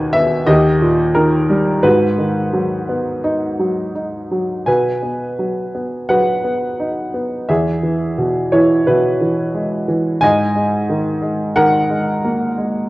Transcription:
Already playing: D#2 B2 D#3 B4 G#5
0.13 B3 E5
0.47 D#2 G4 D#5
0.82 A#2
1.15 D#3 A#4
1.50 G3
1.83 G#2 F#4 B4
2.18 D#3
2.53 F#3
2.89 B3
3.24 D#4
3.60 F#3
3.95 D#4
4.32 F#3
4.66 B2 B4 G#5
5.03 B3
5.39 F#3
5.75 B3
6.09 F#3 B4 F#5
6.44 B3
6.80 D#4
7.14 B3
7.49 E2 G#4 E5
7.83 E3
8.18 B2
8.52 E3 E4 C#5
8.87 B2 E4 B4
9.21 E3
9.54 G#3
9.88 E3
10.21 G#2 D#5 G#5
10.55 G#3
10.89 D#3
11.22 G#3
11.56 D#3 A#4 F#5
11.90 G#3
12.25 A#3
12.58 G#3

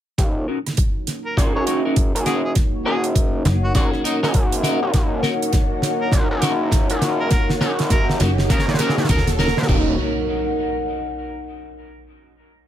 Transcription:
0.18 D#1 A#3 D#4 F#4 C#5, kick, snare, closed hi-hat, riser
0.48 C#4 D#4 F#4 A#4
0.67 cross-stick, snare, closed hi-hat
0.69 snare
0.73 snare
0.75 snare
0.77 kick, snare, closed hi-hat
0.94 F#5
1.01 D#5
1.07 A#4, snare, closed hi-hat
1.25 A#4
1.37 A#1 C#4 D#4 F#4 G#4, kick, snare, closed hi-hat
1.55 F#1 C#5
1.66 C#4 D#4 F#4 A#4 C#5, closed hi-hat
1.85 C#4 D#4 F#4 A#4
1.96 kick, closed hi-hat
2.15 F#1, closed hi-hat
2.26 C#4 D#4 F#4 G#4 A#4, snare, closed hi-hat
2.45 G#4
2.55 kick, snare, closed hi-hat
2.85 F#1 C#4 D#4 F#4 G#4 A#4
3.04 closed hi-hat
3.15 kick, closed hi-hat
3.45 F#1, snare, closed hi-hat
3.64 F#4
3.75 A#1 C#4 D#4 F#4 G#4, kick, snare, closed hi-hat
3.94 cross-stick
4.04 C#4 D#4 F#4 A#4, closed hi-hat
4.23 F#1 C#4 D#4 F#4 A#4, snare
4.34 F#1, kick, closed hi-hat
4.52 closed hi-hat
4.63 C#4 D#4 F#4 A#4, snare, closed hi-hat
4.82 D#1
4.94 D#1, kick, snare, closed hi-hat
5.23 C#4 D#4 F#4 A#4, snare
5.42 closed hi-hat
5.53 kick, snare, closed hi-hat
5.82 snare, closed hi-hat
6.01 A#4
6.12 A#1, kick, snare, closed hi-hat
6.31 F#1
6.42 C#4 D#4 F#4 A#4, snare, closed hi-hat
6.71 kick, snare, closed hi-hat
6.90 F#1, closed hi-hat
7.02 snare, closed hi-hat
7.20 A#4
7.31 A#4, kick, snare, closed hi-hat
7.50 snare
7.61 F#1 C#4 D#4 F#4 A#4, snare
7.79 snare, closed hi-hat
7.90 A#4, kick, snare, closed hi-hat
8.09 snare
8.20 F#1 C#4 D#4 F#4 A#4, snare, closed hi-hat
8.38 snare
8.50 C#2 C#4 D#4 F#4 A#4, kick, snare, closed hi-hat
8.59 snare
8.68 A#1, snare
8.74 snare
8.79 C#4 D#4 F#4 A#4, snare, closed hi-hat
8.89 snare
8.97 D#1, snare
9.04 snare
9.09 D#1 C#4 D#4 F#4 A#4, kick, snare, closed hi-hat
9.17 snare
9.27 snare, closed hi-hat
9.39 C#4 D#4 F#4 A#4, snare
9.48 snare
9.57 G#1, snare
9.62 snare
9.68 D#1 A#3 C#4 D#4 F#4 A#4 C#5, kick, crash, impact
9.79 A#4
9.89 D#5
9.96 F#5

